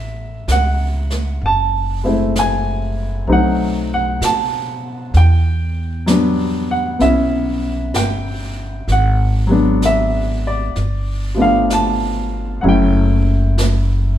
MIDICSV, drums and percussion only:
0, 0, Header, 1, 2, 480
1, 0, Start_track
1, 0, Tempo, 936037
1, 727, Time_signature, 4, 2, 24, 8
1, 7272, End_track
2, 0, Start_track
2, 0, Title_t, "Drums"
2, 247, Note_on_c, 9, 25, 35
2, 247, Note_on_c, 9, 38, 39
2, 247, Note_on_c, 9, 44, 46
2, 298, Note_off_c, 9, 38, 0
2, 298, Note_off_c, 9, 44, 0
2, 565, Note_on_c, 9, 38, 25
2, 617, Note_off_c, 9, 38, 0
2, 725, Note_off_c, 9, 25, 0
2, 725, Note_on_c, 9, 25, 34
2, 1208, Note_off_c, 9, 25, 0
2, 1208, Note_on_c, 9, 25, 29
2, 1208, Note_on_c, 9, 38, 39
2, 1208, Note_on_c, 9, 44, 43
2, 1259, Note_off_c, 9, 38, 0
2, 1259, Note_off_c, 9, 44, 0
2, 1684, Note_off_c, 9, 25, 0
2, 1684, Note_on_c, 9, 25, 29
2, 2162, Note_off_c, 9, 25, 0
2, 2162, Note_on_c, 9, 25, 35
2, 2162, Note_on_c, 9, 38, 43
2, 2162, Note_on_c, 9, 44, 57
2, 2214, Note_off_c, 9, 38, 0
2, 2214, Note_off_c, 9, 44, 0
2, 2637, Note_off_c, 9, 25, 0
2, 2637, Note_on_c, 9, 25, 28
2, 2637, Note_on_c, 9, 38, 24
2, 2688, Note_off_c, 9, 38, 0
2, 3115, Note_off_c, 9, 25, 0
2, 3115, Note_on_c, 9, 25, 35
2, 3115, Note_on_c, 9, 38, 43
2, 3115, Note_on_c, 9, 44, 49
2, 3166, Note_off_c, 9, 38, 0
2, 3166, Note_off_c, 9, 44, 0
2, 3590, Note_off_c, 9, 25, 0
2, 3590, Note_on_c, 9, 25, 39
2, 3590, Note_on_c, 9, 38, 26
2, 3642, Note_off_c, 9, 38, 0
2, 4072, Note_off_c, 9, 25, 0
2, 4072, Note_on_c, 9, 25, 39
2, 4072, Note_on_c, 9, 38, 45
2, 4072, Note_on_c, 9, 44, 53
2, 4124, Note_off_c, 9, 38, 0
2, 4124, Note_off_c, 9, 44, 0
2, 4554, Note_off_c, 9, 25, 0
2, 4554, Note_on_c, 9, 25, 33
2, 4554, Note_on_c, 9, 38, 22
2, 4606, Note_off_c, 9, 38, 0
2, 5036, Note_off_c, 9, 25, 0
2, 5036, Note_on_c, 9, 25, 35
2, 5036, Note_on_c, 9, 38, 36
2, 5036, Note_on_c, 9, 44, 47
2, 5088, Note_off_c, 9, 38, 0
2, 5088, Note_off_c, 9, 44, 0
2, 5516, Note_off_c, 9, 25, 0
2, 5516, Note_on_c, 9, 25, 32
2, 5516, Note_on_c, 9, 38, 25
2, 5567, Note_off_c, 9, 38, 0
2, 6000, Note_off_c, 9, 25, 0
2, 6000, Note_on_c, 9, 25, 37
2, 6000, Note_on_c, 9, 38, 41
2, 6000, Note_on_c, 9, 44, 49
2, 6052, Note_off_c, 9, 38, 0
2, 6052, Note_off_c, 9, 44, 0
2, 6480, Note_off_c, 9, 25, 0
2, 6480, Note_on_c, 9, 25, 28
2, 6963, Note_off_c, 9, 25, 0
2, 6963, Note_on_c, 9, 25, 30
2, 6963, Note_on_c, 9, 38, 41
2, 6963, Note_on_c, 9, 44, 48
2, 7014, Note_off_c, 9, 38, 0
2, 7014, Note_off_c, 9, 44, 0
2, 7272, Note_off_c, 9, 25, 0
2, 7272, End_track
0, 0, End_of_file